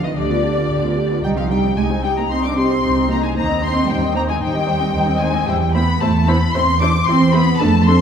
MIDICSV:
0, 0, Header, 1, 6, 480
1, 0, Start_track
1, 0, Key_signature, -3, "minor"
1, 0, Tempo, 531915
1, 1113, Time_signature, 4, 2, 24, 8
1, 7231, End_track
2, 0, Start_track
2, 0, Title_t, "Violin section"
2, 0, Program_c, 0, 48
2, 38, Note_on_c, 0, 75, 54
2, 84, Note_off_c, 0, 75, 0
2, 147, Note_on_c, 0, 74, 71
2, 1093, Note_off_c, 0, 74, 0
2, 1114, Note_on_c, 0, 79, 68
2, 1162, Note_off_c, 0, 79, 0
2, 1251, Note_on_c, 0, 77, 62
2, 1360, Note_off_c, 0, 77, 0
2, 1360, Note_on_c, 0, 79, 64
2, 1593, Note_off_c, 0, 79, 0
2, 1600, Note_on_c, 0, 80, 69
2, 1838, Note_off_c, 0, 80, 0
2, 1841, Note_on_c, 0, 79, 69
2, 1957, Note_off_c, 0, 79, 0
2, 1981, Note_on_c, 0, 82, 63
2, 2083, Note_on_c, 0, 84, 73
2, 2088, Note_off_c, 0, 82, 0
2, 2201, Note_off_c, 0, 84, 0
2, 2215, Note_on_c, 0, 86, 77
2, 2327, Note_off_c, 0, 86, 0
2, 2328, Note_on_c, 0, 84, 73
2, 2792, Note_off_c, 0, 84, 0
2, 2806, Note_on_c, 0, 82, 71
2, 2921, Note_off_c, 0, 82, 0
2, 2927, Note_on_c, 0, 80, 69
2, 3036, Note_on_c, 0, 82, 80
2, 3041, Note_off_c, 0, 80, 0
2, 3269, Note_off_c, 0, 82, 0
2, 3282, Note_on_c, 0, 84, 81
2, 3515, Note_off_c, 0, 84, 0
2, 3518, Note_on_c, 0, 79, 73
2, 3751, Note_off_c, 0, 79, 0
2, 3752, Note_on_c, 0, 82, 81
2, 3798, Note_off_c, 0, 82, 0
2, 3879, Note_on_c, 0, 80, 60
2, 3977, Note_on_c, 0, 79, 88
2, 3990, Note_off_c, 0, 80, 0
2, 4689, Note_off_c, 0, 79, 0
2, 4699, Note_on_c, 0, 80, 77
2, 4944, Note_off_c, 0, 80, 0
2, 4944, Note_on_c, 0, 79, 75
2, 5180, Note_on_c, 0, 83, 85
2, 5188, Note_off_c, 0, 79, 0
2, 5420, Note_off_c, 0, 83, 0
2, 5420, Note_on_c, 0, 81, 88
2, 5662, Note_on_c, 0, 83, 89
2, 5664, Note_off_c, 0, 81, 0
2, 5894, Note_on_c, 0, 84, 98
2, 5904, Note_off_c, 0, 83, 0
2, 6136, Note_on_c, 0, 86, 90
2, 6139, Note_off_c, 0, 84, 0
2, 6370, Note_on_c, 0, 84, 100
2, 6374, Note_off_c, 0, 86, 0
2, 6609, Note_on_c, 0, 83, 91
2, 6616, Note_off_c, 0, 84, 0
2, 6846, Note_on_c, 0, 81, 97
2, 6857, Note_off_c, 0, 83, 0
2, 7094, Note_on_c, 0, 84, 92
2, 7097, Note_off_c, 0, 81, 0
2, 7231, Note_off_c, 0, 84, 0
2, 7231, End_track
3, 0, Start_track
3, 0, Title_t, "Violin section"
3, 0, Program_c, 1, 48
3, 31, Note_on_c, 1, 75, 52
3, 147, Note_on_c, 1, 74, 64
3, 149, Note_off_c, 1, 75, 0
3, 1112, Note_off_c, 1, 74, 0
3, 1115, Note_on_c, 1, 79, 61
3, 1162, Note_off_c, 1, 79, 0
3, 1235, Note_on_c, 1, 77, 53
3, 1283, Note_off_c, 1, 77, 0
3, 1356, Note_on_c, 1, 79, 58
3, 1428, Note_off_c, 1, 79, 0
3, 1596, Note_on_c, 1, 80, 58
3, 1669, Note_off_c, 1, 80, 0
3, 1833, Note_on_c, 1, 79, 55
3, 1882, Note_off_c, 1, 79, 0
3, 1958, Note_on_c, 1, 82, 56
3, 2006, Note_off_c, 1, 82, 0
3, 2075, Note_on_c, 1, 84, 59
3, 2194, Note_off_c, 1, 84, 0
3, 2201, Note_on_c, 1, 86, 55
3, 2248, Note_off_c, 1, 86, 0
3, 2321, Note_on_c, 1, 84, 68
3, 2789, Note_off_c, 1, 84, 0
3, 2801, Note_on_c, 1, 82, 63
3, 2916, Note_off_c, 1, 82, 0
3, 2918, Note_on_c, 1, 80, 62
3, 2966, Note_off_c, 1, 80, 0
3, 3044, Note_on_c, 1, 82, 71
3, 3273, Note_off_c, 1, 82, 0
3, 3281, Note_on_c, 1, 84, 70
3, 3509, Note_off_c, 1, 84, 0
3, 3515, Note_on_c, 1, 79, 67
3, 3745, Note_off_c, 1, 79, 0
3, 3760, Note_on_c, 1, 82, 63
3, 3805, Note_off_c, 1, 82, 0
3, 3868, Note_on_c, 1, 80, 53
3, 3915, Note_off_c, 1, 80, 0
3, 3990, Note_on_c, 1, 79, 76
3, 4695, Note_off_c, 1, 79, 0
3, 4711, Note_on_c, 1, 80, 72
3, 4945, Note_on_c, 1, 79, 65
3, 4950, Note_off_c, 1, 80, 0
3, 5018, Note_off_c, 1, 79, 0
3, 5188, Note_on_c, 1, 83, 82
3, 5424, Note_off_c, 1, 83, 0
3, 5424, Note_on_c, 1, 81, 73
3, 5496, Note_off_c, 1, 81, 0
3, 5664, Note_on_c, 1, 83, 74
3, 5900, Note_off_c, 1, 83, 0
3, 5907, Note_on_c, 1, 84, 89
3, 6138, Note_on_c, 1, 86, 76
3, 6145, Note_off_c, 1, 84, 0
3, 6380, Note_off_c, 1, 86, 0
3, 6381, Note_on_c, 1, 84, 81
3, 6617, Note_off_c, 1, 84, 0
3, 6623, Note_on_c, 1, 83, 82
3, 6859, Note_off_c, 1, 83, 0
3, 6865, Note_on_c, 1, 81, 82
3, 7107, Note_off_c, 1, 81, 0
3, 7109, Note_on_c, 1, 84, 80
3, 7231, Note_off_c, 1, 84, 0
3, 7231, End_track
4, 0, Start_track
4, 0, Title_t, "Viola section"
4, 0, Program_c, 2, 48
4, 33, Note_on_c, 2, 65, 37
4, 35, Note_on_c, 2, 59, 39
4, 150, Note_off_c, 2, 65, 0
4, 152, Note_off_c, 2, 59, 0
4, 154, Note_on_c, 2, 62, 43
4, 154, Note_on_c, 2, 67, 46
4, 263, Note_off_c, 2, 62, 0
4, 263, Note_off_c, 2, 67, 0
4, 276, Note_on_c, 2, 59, 39
4, 277, Note_on_c, 2, 65, 41
4, 393, Note_off_c, 2, 59, 0
4, 393, Note_off_c, 2, 65, 0
4, 394, Note_on_c, 2, 67, 44
4, 395, Note_on_c, 2, 62, 41
4, 512, Note_off_c, 2, 67, 0
4, 513, Note_off_c, 2, 62, 0
4, 516, Note_on_c, 2, 59, 42
4, 520, Note_on_c, 2, 65, 41
4, 634, Note_off_c, 2, 59, 0
4, 635, Note_off_c, 2, 65, 0
4, 635, Note_on_c, 2, 67, 41
4, 637, Note_on_c, 2, 62, 44
4, 745, Note_off_c, 2, 67, 0
4, 746, Note_off_c, 2, 62, 0
4, 758, Note_on_c, 2, 59, 43
4, 759, Note_on_c, 2, 65, 42
4, 869, Note_on_c, 2, 67, 44
4, 870, Note_on_c, 2, 62, 43
4, 875, Note_off_c, 2, 59, 0
4, 875, Note_off_c, 2, 65, 0
4, 991, Note_off_c, 2, 62, 0
4, 991, Note_off_c, 2, 67, 0
4, 996, Note_on_c, 2, 59, 40
4, 996, Note_on_c, 2, 65, 42
4, 1112, Note_on_c, 2, 63, 48
4, 1114, Note_off_c, 2, 59, 0
4, 1114, Note_off_c, 2, 65, 0
4, 1116, Note_on_c, 2, 67, 48
4, 1224, Note_off_c, 2, 63, 0
4, 1226, Note_off_c, 2, 67, 0
4, 1233, Note_on_c, 2, 60, 42
4, 1235, Note_on_c, 2, 63, 39
4, 1338, Note_off_c, 2, 63, 0
4, 1349, Note_on_c, 2, 63, 44
4, 1350, Note_on_c, 2, 67, 43
4, 1353, Note_off_c, 2, 60, 0
4, 1460, Note_off_c, 2, 63, 0
4, 1471, Note_on_c, 2, 60, 42
4, 1471, Note_on_c, 2, 63, 40
4, 1472, Note_off_c, 2, 67, 0
4, 1583, Note_off_c, 2, 63, 0
4, 1593, Note_off_c, 2, 60, 0
4, 1594, Note_on_c, 2, 63, 47
4, 1595, Note_on_c, 2, 67, 49
4, 1706, Note_off_c, 2, 63, 0
4, 1707, Note_off_c, 2, 67, 0
4, 1719, Note_on_c, 2, 60, 43
4, 1721, Note_on_c, 2, 63, 44
4, 1828, Note_off_c, 2, 63, 0
4, 1837, Note_off_c, 2, 60, 0
4, 1839, Note_on_c, 2, 63, 46
4, 1841, Note_on_c, 2, 67, 47
4, 1948, Note_off_c, 2, 63, 0
4, 1958, Note_on_c, 2, 60, 43
4, 1958, Note_on_c, 2, 63, 41
4, 1959, Note_off_c, 2, 67, 0
4, 2067, Note_off_c, 2, 63, 0
4, 2074, Note_on_c, 2, 67, 43
4, 2078, Note_off_c, 2, 60, 0
4, 2078, Note_on_c, 2, 63, 46
4, 2185, Note_off_c, 2, 63, 0
4, 2188, Note_off_c, 2, 67, 0
4, 2195, Note_on_c, 2, 60, 43
4, 2195, Note_on_c, 2, 63, 45
4, 2304, Note_off_c, 2, 63, 0
4, 2315, Note_on_c, 2, 63, 43
4, 2317, Note_off_c, 2, 60, 0
4, 2318, Note_on_c, 2, 67, 46
4, 2422, Note_off_c, 2, 63, 0
4, 2433, Note_on_c, 2, 63, 46
4, 2437, Note_on_c, 2, 60, 47
4, 2438, Note_off_c, 2, 67, 0
4, 2539, Note_off_c, 2, 63, 0
4, 2549, Note_on_c, 2, 67, 47
4, 2550, Note_on_c, 2, 63, 47
4, 2557, Note_off_c, 2, 60, 0
4, 2658, Note_off_c, 2, 63, 0
4, 2664, Note_off_c, 2, 67, 0
4, 2669, Note_on_c, 2, 63, 45
4, 2670, Note_on_c, 2, 60, 48
4, 2779, Note_off_c, 2, 63, 0
4, 2788, Note_on_c, 2, 67, 48
4, 2790, Note_on_c, 2, 63, 48
4, 2793, Note_off_c, 2, 60, 0
4, 2904, Note_off_c, 2, 63, 0
4, 2912, Note_off_c, 2, 67, 0
4, 2914, Note_on_c, 2, 60, 46
4, 2915, Note_on_c, 2, 63, 47
4, 3016, Note_off_c, 2, 63, 0
4, 3026, Note_on_c, 2, 63, 52
4, 3028, Note_on_c, 2, 72, 54
4, 3035, Note_off_c, 2, 60, 0
4, 3142, Note_off_c, 2, 63, 0
4, 3143, Note_off_c, 2, 72, 0
4, 3146, Note_on_c, 2, 60, 47
4, 3148, Note_on_c, 2, 75, 48
4, 3269, Note_off_c, 2, 60, 0
4, 3270, Note_off_c, 2, 75, 0
4, 3272, Note_on_c, 2, 72, 50
4, 3274, Note_on_c, 2, 63, 47
4, 3390, Note_on_c, 2, 75, 46
4, 3391, Note_off_c, 2, 72, 0
4, 3391, Note_on_c, 2, 60, 48
4, 3392, Note_off_c, 2, 63, 0
4, 3509, Note_off_c, 2, 75, 0
4, 3510, Note_off_c, 2, 60, 0
4, 3510, Note_on_c, 2, 72, 52
4, 3511, Note_on_c, 2, 63, 54
4, 3621, Note_off_c, 2, 63, 0
4, 3621, Note_off_c, 2, 72, 0
4, 3631, Note_on_c, 2, 60, 47
4, 3631, Note_on_c, 2, 75, 47
4, 3748, Note_off_c, 2, 60, 0
4, 3748, Note_off_c, 2, 75, 0
4, 3749, Note_on_c, 2, 72, 54
4, 3751, Note_on_c, 2, 63, 50
4, 3867, Note_off_c, 2, 72, 0
4, 3868, Note_off_c, 2, 63, 0
4, 3870, Note_on_c, 2, 60, 50
4, 3871, Note_on_c, 2, 75, 49
4, 3987, Note_off_c, 2, 60, 0
4, 3988, Note_off_c, 2, 75, 0
4, 3988, Note_on_c, 2, 72, 50
4, 3989, Note_on_c, 2, 63, 52
4, 4098, Note_off_c, 2, 63, 0
4, 4098, Note_off_c, 2, 72, 0
4, 4104, Note_on_c, 2, 75, 48
4, 4105, Note_on_c, 2, 60, 45
4, 4217, Note_on_c, 2, 63, 50
4, 4219, Note_on_c, 2, 72, 53
4, 4225, Note_off_c, 2, 60, 0
4, 4225, Note_off_c, 2, 75, 0
4, 4338, Note_on_c, 2, 75, 50
4, 4340, Note_on_c, 2, 60, 49
4, 4342, Note_off_c, 2, 63, 0
4, 4342, Note_off_c, 2, 72, 0
4, 4457, Note_on_c, 2, 63, 54
4, 4459, Note_on_c, 2, 72, 54
4, 4462, Note_off_c, 2, 75, 0
4, 4464, Note_off_c, 2, 60, 0
4, 4574, Note_off_c, 2, 63, 0
4, 4575, Note_off_c, 2, 72, 0
4, 4580, Note_on_c, 2, 75, 52
4, 4582, Note_on_c, 2, 60, 53
4, 4704, Note_off_c, 2, 75, 0
4, 4704, Note_on_c, 2, 72, 55
4, 4705, Note_off_c, 2, 60, 0
4, 4706, Note_on_c, 2, 63, 56
4, 4820, Note_on_c, 2, 60, 55
4, 4820, Note_on_c, 2, 75, 53
4, 4826, Note_off_c, 2, 72, 0
4, 4827, Note_off_c, 2, 63, 0
4, 4940, Note_on_c, 2, 72, 58
4, 4943, Note_on_c, 2, 64, 58
4, 4944, Note_off_c, 2, 75, 0
4, 4945, Note_off_c, 2, 60, 0
4, 5012, Note_off_c, 2, 72, 0
4, 5015, Note_off_c, 2, 64, 0
4, 5180, Note_on_c, 2, 72, 60
4, 5184, Note_on_c, 2, 64, 55
4, 5253, Note_off_c, 2, 72, 0
4, 5256, Note_off_c, 2, 64, 0
4, 5424, Note_on_c, 2, 72, 58
4, 5427, Note_on_c, 2, 64, 63
4, 5496, Note_off_c, 2, 72, 0
4, 5499, Note_off_c, 2, 64, 0
4, 5662, Note_on_c, 2, 64, 57
4, 5666, Note_on_c, 2, 72, 60
4, 5734, Note_off_c, 2, 64, 0
4, 5738, Note_off_c, 2, 72, 0
4, 5903, Note_on_c, 2, 64, 55
4, 5907, Note_on_c, 2, 72, 59
4, 5976, Note_off_c, 2, 64, 0
4, 5980, Note_off_c, 2, 72, 0
4, 6145, Note_on_c, 2, 72, 60
4, 6148, Note_on_c, 2, 64, 63
4, 6217, Note_off_c, 2, 72, 0
4, 6220, Note_off_c, 2, 64, 0
4, 6380, Note_on_c, 2, 72, 57
4, 6383, Note_on_c, 2, 64, 55
4, 6453, Note_off_c, 2, 72, 0
4, 6455, Note_off_c, 2, 64, 0
4, 6615, Note_on_c, 2, 64, 59
4, 6616, Note_on_c, 2, 72, 60
4, 6687, Note_off_c, 2, 64, 0
4, 6688, Note_off_c, 2, 72, 0
4, 6858, Note_on_c, 2, 62, 68
4, 6859, Note_on_c, 2, 69, 65
4, 6930, Note_off_c, 2, 62, 0
4, 6931, Note_off_c, 2, 69, 0
4, 7108, Note_on_c, 2, 69, 59
4, 7110, Note_on_c, 2, 62, 59
4, 7180, Note_off_c, 2, 69, 0
4, 7182, Note_off_c, 2, 62, 0
4, 7231, End_track
5, 0, Start_track
5, 0, Title_t, "Cello section"
5, 0, Program_c, 3, 48
5, 39, Note_on_c, 3, 51, 50
5, 151, Note_off_c, 3, 51, 0
5, 157, Note_on_c, 3, 50, 52
5, 1098, Note_off_c, 3, 50, 0
5, 1117, Note_on_c, 3, 55, 65
5, 1165, Note_off_c, 3, 55, 0
5, 1233, Note_on_c, 3, 53, 57
5, 1350, Note_on_c, 3, 55, 60
5, 1351, Note_off_c, 3, 53, 0
5, 1588, Note_off_c, 3, 55, 0
5, 1590, Note_on_c, 3, 56, 62
5, 1662, Note_off_c, 3, 56, 0
5, 1833, Note_on_c, 3, 55, 61
5, 1952, Note_off_c, 3, 55, 0
5, 1954, Note_on_c, 3, 58, 62
5, 2076, Note_off_c, 3, 58, 0
5, 2077, Note_on_c, 3, 60, 62
5, 2125, Note_off_c, 3, 60, 0
5, 2195, Note_on_c, 3, 62, 63
5, 2314, Note_off_c, 3, 62, 0
5, 2321, Note_on_c, 3, 60, 67
5, 2796, Note_on_c, 3, 58, 63
5, 2798, Note_off_c, 3, 60, 0
5, 2914, Note_off_c, 3, 58, 0
5, 2915, Note_on_c, 3, 56, 57
5, 3031, Note_on_c, 3, 58, 68
5, 3033, Note_off_c, 3, 56, 0
5, 3103, Note_off_c, 3, 58, 0
5, 3270, Note_on_c, 3, 60, 67
5, 3504, Note_off_c, 3, 60, 0
5, 3504, Note_on_c, 3, 55, 73
5, 3744, Note_off_c, 3, 55, 0
5, 3744, Note_on_c, 3, 58, 70
5, 3792, Note_off_c, 3, 58, 0
5, 3866, Note_on_c, 3, 56, 57
5, 3913, Note_off_c, 3, 56, 0
5, 3974, Note_on_c, 3, 55, 68
5, 4687, Note_off_c, 3, 55, 0
5, 4700, Note_on_c, 3, 56, 72
5, 4940, Note_off_c, 3, 56, 0
5, 4941, Note_on_c, 3, 55, 69
5, 5186, Note_off_c, 3, 55, 0
5, 5189, Note_on_c, 3, 59, 78
5, 5423, Note_on_c, 3, 57, 78
5, 5429, Note_off_c, 3, 59, 0
5, 5660, Note_off_c, 3, 57, 0
5, 5663, Note_on_c, 3, 59, 82
5, 5736, Note_off_c, 3, 59, 0
5, 5904, Note_on_c, 3, 60, 78
5, 5976, Note_off_c, 3, 60, 0
5, 6145, Note_on_c, 3, 62, 81
5, 6217, Note_off_c, 3, 62, 0
5, 6378, Note_on_c, 3, 60, 85
5, 6615, Note_off_c, 3, 60, 0
5, 6627, Note_on_c, 3, 59, 81
5, 6863, Note_on_c, 3, 57, 87
5, 6866, Note_off_c, 3, 59, 0
5, 7101, Note_on_c, 3, 60, 83
5, 7106, Note_off_c, 3, 57, 0
5, 7173, Note_off_c, 3, 60, 0
5, 7231, End_track
6, 0, Start_track
6, 0, Title_t, "Double bass section"
6, 0, Program_c, 4, 48
6, 0, Note_on_c, 4, 38, 49
6, 91, Note_off_c, 4, 38, 0
6, 150, Note_on_c, 4, 38, 51
6, 575, Note_off_c, 4, 38, 0
6, 634, Note_on_c, 4, 38, 55
6, 1057, Note_off_c, 4, 38, 0
6, 1112, Note_on_c, 4, 36, 59
6, 1537, Note_off_c, 4, 36, 0
6, 1592, Note_on_c, 4, 36, 50
6, 2019, Note_off_c, 4, 36, 0
6, 2080, Note_on_c, 4, 36, 63
6, 2503, Note_off_c, 4, 36, 0
6, 2564, Note_on_c, 4, 36, 59
6, 2983, Note_off_c, 4, 36, 0
6, 3048, Note_on_c, 4, 39, 62
6, 3461, Note_off_c, 4, 39, 0
6, 3514, Note_on_c, 4, 39, 62
6, 3931, Note_off_c, 4, 39, 0
6, 3986, Note_on_c, 4, 39, 70
6, 4409, Note_off_c, 4, 39, 0
6, 4465, Note_on_c, 4, 39, 69
6, 4891, Note_off_c, 4, 39, 0
6, 4951, Note_on_c, 4, 40, 71
6, 5374, Note_off_c, 4, 40, 0
6, 5423, Note_on_c, 4, 40, 67
6, 5847, Note_off_c, 4, 40, 0
6, 5898, Note_on_c, 4, 40, 77
6, 6322, Note_off_c, 4, 40, 0
6, 6377, Note_on_c, 4, 40, 72
6, 6804, Note_off_c, 4, 40, 0
6, 6861, Note_on_c, 4, 41, 85
6, 7231, Note_off_c, 4, 41, 0
6, 7231, End_track
0, 0, End_of_file